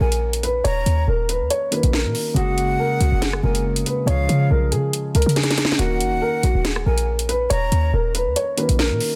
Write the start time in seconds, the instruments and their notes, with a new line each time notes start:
Already playing: grand piano D#3 A#3 C#4 F#4 A#4
0.00 808-style bass A#1, grand piano A#4, flute G#5
0.12 closed hi-hat
0.33 closed hi-hat
0.43 grand piano B4, closed hi-hat
0.64 808-style bass D#1, grand piano C#5, flute A#5, closed hi-hat
0.86 808-style bass D#2, closed hi-hat
1.08 808-style bass D#1, grand piano A#4
1.29 grand piano B4, closed hi-hat
1.40 808-style bass D#2
1.50 grand piano C#5, closed hi-hat
1.71 grand piano D#3 A#3 C#4 F#4 A#4 B4, closed hi-hat
1.83 808-style bass A#1, closed hi-hat
1.93 grand piano A#4, snare
2.05 808-style bass A#2
2.15 open hi-hat
2.34 808-style bass F#1, grand piano C#3 G#3 A#3 F#4 G#4, flute F#5, closed hi-hat
2.58 closed hi-hat
2.80 grand piano A#4
3.00 808-style bass C#2, grand piano F#4, closed hi-hat
3.12 808-style bass F#1
3.21 grand piano G#4, snare, closed hi-hat
3.33 cross-stick
3.43 808-style bass F#1, grand piano C#3 G#3 A#3 F#4 G#4 A#4, flute G#5
3.55 closed hi-hat
3.76 closed hi-hat
3.86 grand piano B4, closed hi-hat
4.06 808-style bass C#2, grand piano C#3 F3 G#3 F4 G#4 C#5, flute F5, closed hi-hat
4.29 808-style bass C#3, closed hi-hat
4.51 808-style bass B1, grand piano A#4
4.72 808-style bass C#3, grand piano G#4, closed hi-hat
4.93 closed hi-hat
5.15 808-style bass C#2, grand piano A#4, closed hi-hat
5.22 closed hi-hat
5.26 808-style bass C#3, closed hi-hat
5.36 grand piano G#4, snare, closed hi-hat
5.43 snare, closed hi-hat
5.50 snare, closed hi-hat
5.58 snare, closed hi-hat
5.65 snare
5.72 snare
5.78 808-style bass D#1, grand piano D#3 A#3 C#4 F#4 A#4, flute F#5, closed hi-hat
6.00 808-style bass F#1, closed hi-hat
6.12 808-style bass D#1
6.22 grand piano A#4
6.43 808-style bass A#1, grand piano F#4, closed hi-hat
6.55 808-style bass D#1
6.65 grand piano G#4, snare, closed hi-hat
6.76 cross-stick
6.86 808-style bass A#1, grand piano A#4, flute G#5
6.98 closed hi-hat
7.19 closed hi-hat
7.29 grand piano B4, closed hi-hat
7.50 808-style bass D#1, grand piano C#5, flute A#5, closed hi-hat
7.72 808-style bass D#2, closed hi-hat
7.93 808-style bass D#1, grand piano A#4
8.15 grand piano B4, closed hi-hat
8.26 808-style bass D#2
8.36 grand piano C#5, closed hi-hat
8.57 grand piano D#3 A#3 C#4 F#4 A#4 B4, closed hi-hat
8.69 808-style bass A#1, closed hi-hat
8.79 grand piano A#4, snare
8.90 808-style bass A#2
9.00 open hi-hat